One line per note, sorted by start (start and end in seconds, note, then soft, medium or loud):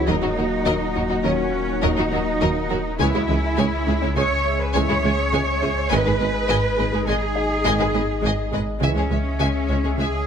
0.00 0.10 C#2 medium
0.00 1.50 F#4 soft
0.00 0.33 E5 soft
0.00 1.50 F#5 medium
0.00 0.34 E6 medium
0.07 3.02 D#1 medium
0.07 0.14 D#2 medium
0.07 0.15 D#2 medium
0.07 2.82 A#2 medium
0.07 0.17 D#3 medium
0.07 2.82 F#3 medium
0.07 0.14 F#3 medium
0.07 3.00 A#3 medium
0.07 2.83 A#3 medium
0.07 3.00 D#4 medium
0.07 1.25 D#4 medium
0.07 3.00 F#4 medium
0.07 2.83 F#4 medium
0.07 0.15 A#4 medium
0.07 0.14 D#5 medium
0.07 3.00 F#5 medium
0.22 0.29 D#2 medium
0.22 0.28 F#3 soft
0.22 0.31 A#3 medium
0.22 0.29 D#4 medium
0.22 0.28 F#4 medium
0.36 0.44 D#2 medium
0.36 0.43 F#3 medium
0.36 0.46 F#3 medium
0.36 0.43 F#4 medium
0.36 0.43 A#4 medium
0.66 0.73 D#2 medium
0.66 0.75 D#3 medium
0.66 0.72 F#3 medium
0.66 0.72 A#4 medium
0.66 0.72 D#5 medium
0.95 1.02 D#2 medium
0.95 1.02 F#3 medium
0.95 1.05 D#4 medium
0.95 1.01 F#4 medium
0.95 1.02 A#4 medium
1.10 1.17 D#2 medium
1.10 1.16 F#3 medium
1.10 1.16 D#4 medium
1.10 1.19 D#4 medium
1.10 1.16 F#4 medium
1.23 1.31 D#2 medium
1.23 1.32 D#2 medium
1.23 1.34 D#3 medium
1.23 1.31 F#3 medium
1.23 1.83 C#4 medium
1.23 2.96 C#4 soft
1.23 1.29 A#4 medium
1.23 2.96 C#5 medium
1.23 1.30 D#5 medium
1.82 1.89 D#2 medium
1.82 1.90 D#2 medium
1.82 1.92 D#3 medium
1.82 1.89 F#3 medium
1.82 3.00 D#4 loud
1.82 1.89 A#4 medium
1.82 1.88 D#5 medium
1.97 2.05 D#2 medium
1.97 2.04 F#3 medium
1.97 2.06 A#3 medium
1.97 2.03 D#4 medium
1.97 2.04 F#4 medium
2.12 2.18 D#2 medium
2.12 2.19 D#2 medium
2.12 2.21 F#3 medium
2.12 2.19 F#3 medium
2.12 2.19 F#4 medium
2.12 2.18 A#4 medium
2.41 2.47 D#2 medium
2.41 2.49 D#2 medium
2.41 2.50 D#3 medium
2.41 2.48 F#3 medium
2.41 4.13 A#4 medium
2.41 2.48 A#4 medium
2.41 2.48 D#5 medium
2.70 2.76 D#2 medium
2.70 2.78 D#2 medium
2.70 2.77 F#3 medium
2.70 2.79 D#4 medium
2.70 2.76 F#4 medium
2.70 2.76 A#4 medium
2.99 3.06 C#2 medium
2.99 5.93 C#2 medium
2.99 3.07 C#2 medium
2.99 3.08 C#3 medium
2.99 3.20 C#3 medium
2.99 3.20 E3 medium
2.99 3.06 G#3 medium
2.99 8.81 G#3 medium
2.99 3.21 G#3 medium
2.99 5.92 C#4 medium
2.99 4.14 E4 loud
2.99 8.81 G#4 medium
2.99 3.21 G#4 medium
2.99 3.06 C#5 medium
2.99 5.91 E5 medium
2.99 3.06 G#5 medium
3.14 3.21 C#2 medium
3.14 3.23 G#3 medium
3.14 3.20 G#3 medium
3.14 3.21 E4 soft
3.14 3.20 C#5 medium
3.28 3.35 C#2 medium
3.28 3.36 C#2 medium
3.28 3.38 E3 medium
3.28 3.34 G#3 medium
3.28 3.36 G#4 medium
3.28 3.34 E5 medium
3.58 3.64 C#2 medium
3.58 3.67 C#3 medium
3.58 3.64 G#3 medium
3.58 3.64 C#5 medium
3.58 3.64 G#5 medium
3.87 3.93 C#2 medium
3.87 3.94 C#2 medium
3.87 3.93 G#3 medium
3.87 3.96 C#4 medium
3.87 3.94 G#4 medium
3.87 3.93 E5 medium
4.01 4.09 C#2 medium
4.01 4.07 G#3 medium
4.01 4.10 C#4 medium
4.01 4.08 E4 medium
4.01 4.08 C#5 medium
4.16 4.22 C#2 medium
4.16 4.23 C#2 medium
4.16 4.25 C#3 medium
4.16 4.22 G#3 medium
4.16 4.59 C#5 loud
4.16 4.22 C#5 medium
4.16 4.22 G#5 medium
4.61 4.75 B4 medium
4.74 4.80 C#2 medium
4.74 4.81 C#2 medium
4.74 4.95 C#3 medium
4.74 4.84 C#3 medium
4.74 4.95 E3 medium
4.74 4.95 G#3 medium
4.74 4.81 G#3 medium
4.74 4.95 G#4 medium
4.74 4.80 C#5 medium
4.74 5.89 C#5 loud
4.74 4.81 G#5 medium
4.89 4.95 C#2 medium
4.89 4.95 G#3 medium
4.89 4.98 G#3 medium
4.89 4.95 E4 medium
4.89 4.95 C#5 medium
5.04 5.10 C#2 medium
5.04 5.13 E3 medium
5.04 5.10 G#3 medium
5.04 5.10 G#4 medium
5.04 5.10 E5 medium
5.33 5.39 C#2 medium
5.33 5.40 C#2 medium
5.33 5.42 C#3 medium
5.33 5.39 G#3 medium
5.33 5.40 C#5 medium
5.33 5.39 G#5 medium
5.62 5.68 C#2 medium
5.62 5.69 C#2 medium
5.62 5.69 G#3 medium
5.62 5.71 C#4 medium
5.62 5.68 G#4 medium
5.62 5.68 E5 medium
5.90 8.84 G#1 medium
5.90 5.97 G#1 medium
5.90 5.98 G#1 medium
5.90 6.12 G#2 medium
5.90 6.12 D#3 medium
5.90 6.00 G#3 medium
5.90 6.12 G#3 medium
5.90 5.98 G#3 medium
5.90 8.83 D#4 medium
5.90 6.11 G#4 medium
5.90 7.08 B4 loud
5.90 8.83 D#5 medium
5.90 5.97 D#5 medium
5.90 5.96 G#5 medium
6.06 6.12 G#1 medium
6.06 6.12 G#3 soft
6.06 6.15 D#4 medium
6.06 6.12 G#4 medium
6.06 6.12 B4 medium
6.20 6.26 G#1 medium
6.20 6.27 G#1 medium
6.20 6.26 G#3 medium
6.20 6.29 B3 medium
6.20 6.27 B4 medium
6.20 6.26 D#5 medium
6.48 6.55 G#1 medium
6.48 6.56 G#1 medium
6.48 6.58 G#3 medium
6.48 6.56 G#3 medium
6.48 6.54 D#5 medium
6.48 6.56 G#5 medium
6.77 6.85 G#1 medium
6.77 6.84 G#3 medium
6.77 6.86 G#4 medium
6.77 6.84 B4 medium
6.77 6.84 D#5 medium
6.92 6.99 G#1 medium
6.92 6.99 G#3 medium
6.92 7.01 G#4 medium
6.92 7.00 G#4 medium
6.92 6.98 B4 medium
7.07 7.13 G#1 medium
7.07 7.14 G#1 medium
7.07 7.16 G#3 medium
7.07 7.13 G#3 medium
7.07 8.53 G#4 loud
7.07 7.14 D#5 medium
7.07 7.13 G#5 medium
7.36 9.07 D#4 soft
7.36 9.07 D#5 medium
7.64 7.71 G#1 medium
7.64 7.72 G#1 medium
7.64 7.86 G#2 medium
7.64 7.86 D#3 medium
7.64 7.74 G#3 medium
7.64 7.71 G#3 medium
7.64 7.86 G#3 medium
7.64 7.86 G#4 medium
7.64 7.71 D#5 medium
7.64 7.72 G#5 medium
7.79 7.86 G#1 medium
7.79 7.85 G#3 medium
7.79 7.88 D#4 medium
7.79 7.86 G#4 medium
7.79 7.86 B4 medium
7.94 8.00 G#1 medium
7.94 8.01 G#1 medium
7.94 8.00 G#3 soft
7.94 8.03 B3 medium
7.94 8.01 B4 medium
7.94 8.00 D#5 medium
8.22 8.30 G#1 medium
8.22 8.28 G#3 medium
8.22 8.32 G#3 medium
8.22 8.31 D#5 medium
8.22 8.30 G#5 medium
8.52 8.59 G#1 medium
8.52 8.59 G#3 medium
8.52 8.61 G#4 medium
8.52 8.59 B4 medium
8.52 8.59 D#5 medium
8.80 8.88 C#2 medium
8.80 10.27 C#2 medium
8.80 9.02 G#2 medium
8.80 8.90 C#3 medium
8.80 9.02 E3 medium
8.80 8.87 G#3 medium
8.80 9.02 G#3 medium
8.80 10.27 G#3 medium
8.80 10.27 C#4 medium
8.80 9.95 C#4 medium
8.80 9.01 G#4 medium
8.80 10.27 G#4 medium
8.80 10.27 E5 medium
8.80 8.89 E5 medium
8.80 8.89 G#5 medium
8.96 9.02 C#2 medium
8.96 9.02 G#3 soft
8.96 9.05 G#3 medium
8.96 9.04 G#4 medium
8.96 9.03 C#5 soft
9.10 9.16 C#2 medium
9.10 9.17 C#2 medium
9.10 9.20 E3 medium
9.10 9.17 G#3 soft
9.10 9.17 C#5 soft
9.10 9.17 E5 soft
9.40 9.46 C#2 medium
9.40 9.49 C#3 medium
9.40 9.46 G#3 medium
9.40 9.46 E5 medium
9.40 9.46 G#5 medium
9.69 9.75 C#2 medium
9.69 9.76 G#3 medium
9.69 9.78 C#4 medium
9.69 9.77 C#5 soft
9.69 9.75 E5 soft
9.84 9.90 C#2 soft
9.84 9.90 G#3 soft
9.84 9.93 C#4 medium
9.84 9.91 G#4 medium
9.84 9.90 C#5 soft
9.98 10.04 C#2 medium
9.98 10.05 C#2 medium
9.98 10.07 C#3 medium
9.98 10.04 G#3 medium
9.98 10.27 G#4 medium
9.98 10.06 E5 medium
9.98 10.05 G#5 medium